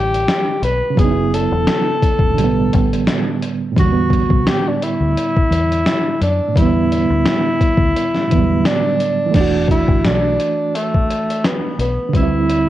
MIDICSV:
0, 0, Header, 1, 5, 480
1, 0, Start_track
1, 0, Key_signature, 1, "minor"
1, 0, Tempo, 697674
1, 669, Time_signature, 4, 2, 24, 8
1, 8731, End_track
2, 0, Start_track
2, 0, Title_t, "Tenor saxophone"
2, 0, Program_c, 0, 66
2, 0, Note_on_c, 0, 67, 108
2, 408, Note_off_c, 0, 67, 0
2, 441, Note_on_c, 0, 71, 106
2, 679, Note_on_c, 0, 68, 101
2, 690, Note_off_c, 0, 71, 0
2, 924, Note_on_c, 0, 69, 101
2, 934, Note_off_c, 0, 68, 0
2, 2356, Note_off_c, 0, 69, 0
2, 2610, Note_on_c, 0, 66, 109
2, 3088, Note_on_c, 0, 67, 114
2, 3098, Note_off_c, 0, 66, 0
2, 3220, Note_on_c, 0, 62, 98
2, 3230, Note_off_c, 0, 67, 0
2, 3330, Note_on_c, 0, 64, 104
2, 3340, Note_off_c, 0, 62, 0
2, 4279, Note_off_c, 0, 64, 0
2, 4283, Note_on_c, 0, 62, 94
2, 4524, Note_on_c, 0, 64, 106
2, 4534, Note_off_c, 0, 62, 0
2, 5956, Note_off_c, 0, 64, 0
2, 5964, Note_on_c, 0, 62, 110
2, 6409, Note_off_c, 0, 62, 0
2, 6438, Note_on_c, 0, 62, 96
2, 6657, Note_off_c, 0, 62, 0
2, 6680, Note_on_c, 0, 64, 91
2, 6898, Note_off_c, 0, 64, 0
2, 6920, Note_on_c, 0, 62, 108
2, 7399, Note_on_c, 0, 57, 94
2, 7409, Note_off_c, 0, 62, 0
2, 7885, Note_on_c, 0, 59, 99
2, 7895, Note_off_c, 0, 57, 0
2, 8117, Note_off_c, 0, 59, 0
2, 8123, Note_on_c, 0, 59, 79
2, 8367, Note_on_c, 0, 64, 91
2, 8378, Note_off_c, 0, 59, 0
2, 8731, Note_off_c, 0, 64, 0
2, 8731, End_track
3, 0, Start_track
3, 0, Title_t, "Reed electric piano"
3, 0, Program_c, 1, 4
3, 0, Control_c, 1, 64, 127
3, 0, Note_on_c, 1, 50, 65
3, 0, Note_on_c, 1, 55, 57
3, 0, Note_on_c, 1, 60, 51
3, 0, Note_on_c, 1, 64, 69
3, 615, Note_off_c, 1, 50, 0
3, 621, Note_on_c, 1, 49, 68
3, 632, Note_off_c, 1, 55, 0
3, 647, Note_off_c, 1, 60, 0
3, 654, Note_on_c, 1, 54, 58
3, 664, Note_off_c, 1, 64, 0
3, 677, Control_c, 1, 64, 0
3, 685, Note_on_c, 1, 59, 60
3, 717, Note_on_c, 1, 63, 55
3, 742, Note_off_c, 1, 63, 0
3, 762, Note_on_c, 1, 64, 67
3, 817, Control_c, 1, 64, 127
3, 1585, Note_off_c, 1, 49, 0
3, 1585, Note_on_c, 1, 45, 84
3, 1602, Note_off_c, 1, 54, 0
3, 1614, Note_on_c, 1, 50, 75
3, 1618, Note_off_c, 1, 59, 0
3, 1638, Control_c, 1, 64, 0
3, 1647, Note_on_c, 1, 55, 74
3, 1657, Note_off_c, 1, 64, 0
3, 1681, Note_on_c, 1, 59, 79
3, 1763, Control_c, 1, 64, 127
3, 2547, Note_off_c, 1, 45, 0
3, 2558, Note_on_c, 1, 45, 66
3, 2562, Note_off_c, 1, 50, 0
3, 2579, Note_off_c, 1, 55, 0
3, 2591, Note_on_c, 1, 50, 56
3, 2596, Note_off_c, 1, 59, 0
3, 2598, Control_c, 1, 64, 0
3, 2622, Note_on_c, 1, 55, 61
3, 2654, Note_on_c, 1, 58, 56
3, 2671, Note_off_c, 1, 58, 0
3, 2699, Note_on_c, 1, 59, 68
3, 2730, Control_c, 1, 64, 127
3, 4450, Note_off_c, 1, 45, 0
3, 4458, Note_on_c, 1, 45, 64
3, 4482, Note_off_c, 1, 50, 0
3, 4493, Note_on_c, 1, 50, 58
3, 4498, Note_off_c, 1, 55, 0
3, 4524, Note_on_c, 1, 55, 57
3, 4537, Note_off_c, 1, 59, 0
3, 4555, Note_on_c, 1, 59, 75
3, 5659, Note_off_c, 1, 45, 0
3, 5676, Note_off_c, 1, 50, 0
3, 5692, Note_off_c, 1, 55, 0
3, 5695, Note_on_c, 1, 45, 60
3, 5708, Note_off_c, 1, 59, 0
3, 5711, Note_on_c, 1, 50, 57
3, 5725, Note_on_c, 1, 54, 46
3, 5741, Note_on_c, 1, 59, 61
3, 5767, Note_off_c, 1, 54, 0
3, 5771, Note_on_c, 1, 55, 55
3, 6373, Note_on_c, 1, 52, 76
3, 6405, Note_on_c, 1, 57, 75
3, 6422, Note_off_c, 1, 45, 0
3, 6430, Note_off_c, 1, 50, 0
3, 6438, Note_on_c, 1, 62, 69
3, 6439, Control_c, 1, 64, 0
3, 6445, Note_off_c, 1, 59, 0
3, 6460, Note_off_c, 1, 55, 0
3, 6471, Note_on_c, 1, 66, 77
3, 6573, Control_c, 1, 64, 127
3, 8293, Note_off_c, 1, 52, 0
3, 8310, Note_off_c, 1, 57, 0
3, 8317, Note_on_c, 1, 50, 65
3, 8326, Note_off_c, 1, 62, 0
3, 8342, Note_off_c, 1, 66, 0
3, 8350, Note_on_c, 1, 55, 57
3, 8357, Control_c, 1, 64, 0
3, 8381, Note_on_c, 1, 60, 52
3, 8412, Note_on_c, 1, 64, 75
3, 8471, Control_c, 1, 64, 127
3, 8731, Note_off_c, 1, 50, 0
3, 8731, Note_off_c, 1, 55, 0
3, 8731, Note_off_c, 1, 60, 0
3, 8731, Note_off_c, 1, 64, 0
3, 8731, End_track
4, 0, Start_track
4, 0, Title_t, "Fingered electric bass"
4, 0, Program_c, 2, 33
4, 0, Note_on_c, 2, 33, 90
4, 176, Note_off_c, 2, 33, 0
4, 428, Note_on_c, 2, 35, 86
4, 554, Note_off_c, 2, 35, 0
4, 672, Note_on_c, 2, 30, 113
4, 1021, Note_off_c, 2, 30, 0
4, 1043, Note_on_c, 2, 28, 104
4, 1143, Note_off_c, 2, 28, 0
4, 1509, Note_on_c, 2, 28, 83
4, 1615, Note_off_c, 2, 28, 0
4, 1629, Note_on_c, 2, 35, 104
4, 1855, Note_off_c, 2, 35, 0
4, 1888, Note_on_c, 2, 33, 96
4, 2104, Note_off_c, 2, 33, 0
4, 2591, Note_on_c, 2, 40, 98
4, 2941, Note_off_c, 2, 40, 0
4, 2960, Note_on_c, 2, 36, 86
4, 3061, Note_off_c, 2, 36, 0
4, 3444, Note_on_c, 2, 38, 82
4, 3543, Note_off_c, 2, 38, 0
4, 3787, Note_on_c, 2, 40, 97
4, 4014, Note_off_c, 2, 40, 0
4, 4272, Note_on_c, 2, 42, 87
4, 4396, Note_off_c, 2, 42, 0
4, 4510, Note_on_c, 2, 40, 101
4, 4860, Note_off_c, 2, 40, 0
4, 4886, Note_on_c, 2, 38, 94
4, 4984, Note_off_c, 2, 38, 0
4, 5348, Note_on_c, 2, 38, 86
4, 5455, Note_off_c, 2, 38, 0
4, 5727, Note_on_c, 2, 40, 83
4, 5944, Note_off_c, 2, 40, 0
4, 6429, Note_on_c, 2, 28, 108
4, 6779, Note_off_c, 2, 28, 0
4, 6799, Note_on_c, 2, 31, 92
4, 6907, Note_on_c, 2, 35, 88
4, 6918, Note_off_c, 2, 31, 0
4, 7134, Note_off_c, 2, 35, 0
4, 8110, Note_on_c, 2, 35, 83
4, 8235, Note_off_c, 2, 35, 0
4, 8348, Note_on_c, 2, 38, 108
4, 8699, Note_off_c, 2, 38, 0
4, 8731, End_track
5, 0, Start_track
5, 0, Title_t, "Drums"
5, 98, Note_on_c, 9, 42, 46
5, 167, Note_off_c, 9, 42, 0
5, 195, Note_on_c, 9, 38, 127
5, 201, Note_on_c, 9, 42, 75
5, 264, Note_off_c, 9, 38, 0
5, 269, Note_off_c, 9, 42, 0
5, 434, Note_on_c, 9, 42, 53
5, 503, Note_off_c, 9, 42, 0
5, 670, Note_on_c, 9, 36, 105
5, 681, Note_on_c, 9, 42, 97
5, 739, Note_off_c, 9, 36, 0
5, 750, Note_off_c, 9, 42, 0
5, 922, Note_on_c, 9, 42, 68
5, 991, Note_off_c, 9, 42, 0
5, 1150, Note_on_c, 9, 38, 124
5, 1152, Note_on_c, 9, 42, 96
5, 1219, Note_off_c, 9, 38, 0
5, 1221, Note_off_c, 9, 42, 0
5, 1393, Note_on_c, 9, 36, 81
5, 1397, Note_on_c, 9, 42, 68
5, 1462, Note_off_c, 9, 36, 0
5, 1466, Note_off_c, 9, 42, 0
5, 1507, Note_on_c, 9, 36, 90
5, 1576, Note_off_c, 9, 36, 0
5, 1639, Note_on_c, 9, 42, 73
5, 1708, Note_off_c, 9, 42, 0
5, 1879, Note_on_c, 9, 42, 65
5, 1886, Note_on_c, 9, 36, 92
5, 1948, Note_off_c, 9, 42, 0
5, 1955, Note_off_c, 9, 36, 0
5, 2018, Note_on_c, 9, 42, 50
5, 2086, Note_off_c, 9, 42, 0
5, 2114, Note_on_c, 9, 38, 125
5, 2120, Note_on_c, 9, 42, 78
5, 2183, Note_off_c, 9, 38, 0
5, 2188, Note_off_c, 9, 42, 0
5, 2356, Note_on_c, 9, 42, 61
5, 2424, Note_off_c, 9, 42, 0
5, 2590, Note_on_c, 9, 36, 102
5, 2599, Note_on_c, 9, 42, 91
5, 2659, Note_off_c, 9, 36, 0
5, 2668, Note_off_c, 9, 42, 0
5, 2822, Note_on_c, 9, 36, 89
5, 2842, Note_on_c, 9, 42, 69
5, 2891, Note_off_c, 9, 36, 0
5, 2911, Note_off_c, 9, 42, 0
5, 2960, Note_on_c, 9, 36, 87
5, 3028, Note_off_c, 9, 36, 0
5, 3074, Note_on_c, 9, 38, 120
5, 3075, Note_on_c, 9, 42, 90
5, 3142, Note_off_c, 9, 38, 0
5, 3144, Note_off_c, 9, 42, 0
5, 3319, Note_on_c, 9, 42, 62
5, 3388, Note_off_c, 9, 42, 0
5, 3560, Note_on_c, 9, 42, 74
5, 3629, Note_off_c, 9, 42, 0
5, 3691, Note_on_c, 9, 36, 89
5, 3760, Note_off_c, 9, 36, 0
5, 3799, Note_on_c, 9, 42, 64
5, 3868, Note_off_c, 9, 42, 0
5, 3934, Note_on_c, 9, 42, 44
5, 4003, Note_off_c, 9, 42, 0
5, 4032, Note_on_c, 9, 38, 117
5, 4038, Note_on_c, 9, 42, 79
5, 4101, Note_off_c, 9, 38, 0
5, 4107, Note_off_c, 9, 42, 0
5, 4276, Note_on_c, 9, 42, 59
5, 4344, Note_off_c, 9, 42, 0
5, 4510, Note_on_c, 9, 36, 99
5, 4519, Note_on_c, 9, 42, 93
5, 4579, Note_off_c, 9, 36, 0
5, 4588, Note_off_c, 9, 42, 0
5, 4760, Note_on_c, 9, 42, 70
5, 4829, Note_off_c, 9, 42, 0
5, 4991, Note_on_c, 9, 38, 112
5, 4993, Note_on_c, 9, 42, 92
5, 5060, Note_off_c, 9, 38, 0
5, 5062, Note_off_c, 9, 42, 0
5, 5233, Note_on_c, 9, 36, 84
5, 5235, Note_on_c, 9, 42, 71
5, 5302, Note_off_c, 9, 36, 0
5, 5304, Note_off_c, 9, 42, 0
5, 5347, Note_on_c, 9, 36, 98
5, 5416, Note_off_c, 9, 36, 0
5, 5479, Note_on_c, 9, 42, 71
5, 5547, Note_off_c, 9, 42, 0
5, 5604, Note_on_c, 9, 38, 35
5, 5673, Note_off_c, 9, 38, 0
5, 5718, Note_on_c, 9, 42, 66
5, 5725, Note_on_c, 9, 36, 87
5, 5787, Note_off_c, 9, 42, 0
5, 5794, Note_off_c, 9, 36, 0
5, 5953, Note_on_c, 9, 38, 127
5, 5958, Note_on_c, 9, 42, 80
5, 6021, Note_off_c, 9, 38, 0
5, 6027, Note_off_c, 9, 42, 0
5, 6193, Note_on_c, 9, 42, 55
5, 6262, Note_off_c, 9, 42, 0
5, 6427, Note_on_c, 9, 49, 93
5, 6429, Note_on_c, 9, 36, 91
5, 6438, Note_on_c, 9, 42, 85
5, 6496, Note_off_c, 9, 49, 0
5, 6498, Note_off_c, 9, 36, 0
5, 6507, Note_off_c, 9, 42, 0
5, 6661, Note_on_c, 9, 36, 92
5, 6681, Note_on_c, 9, 42, 63
5, 6730, Note_off_c, 9, 36, 0
5, 6750, Note_off_c, 9, 42, 0
5, 6799, Note_on_c, 9, 36, 95
5, 6867, Note_off_c, 9, 36, 0
5, 6912, Note_on_c, 9, 38, 106
5, 6914, Note_on_c, 9, 42, 86
5, 6981, Note_off_c, 9, 38, 0
5, 6983, Note_off_c, 9, 42, 0
5, 7156, Note_on_c, 9, 42, 60
5, 7224, Note_off_c, 9, 42, 0
5, 7400, Note_on_c, 9, 42, 76
5, 7468, Note_off_c, 9, 42, 0
5, 7531, Note_on_c, 9, 36, 86
5, 7600, Note_off_c, 9, 36, 0
5, 7641, Note_on_c, 9, 42, 63
5, 7710, Note_off_c, 9, 42, 0
5, 7777, Note_on_c, 9, 42, 49
5, 7846, Note_off_c, 9, 42, 0
5, 7875, Note_on_c, 9, 38, 117
5, 7881, Note_on_c, 9, 42, 78
5, 7944, Note_off_c, 9, 38, 0
5, 7950, Note_off_c, 9, 42, 0
5, 8116, Note_on_c, 9, 42, 55
5, 8185, Note_off_c, 9, 42, 0
5, 8349, Note_on_c, 9, 36, 97
5, 8358, Note_on_c, 9, 42, 88
5, 8418, Note_off_c, 9, 36, 0
5, 8427, Note_off_c, 9, 42, 0
5, 8598, Note_on_c, 9, 42, 66
5, 8666, Note_off_c, 9, 42, 0
5, 8731, End_track
0, 0, End_of_file